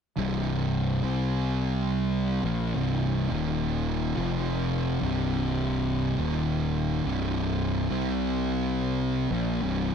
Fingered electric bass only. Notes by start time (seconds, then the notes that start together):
0.18 C1
1.03 C2
2.44 A#1
2.75 C1
3.31 D#1
4.18 F1
5.02 C1
6.18 D#1
7.05 C1
7.91 C2
9.31 A#1
9.63 C1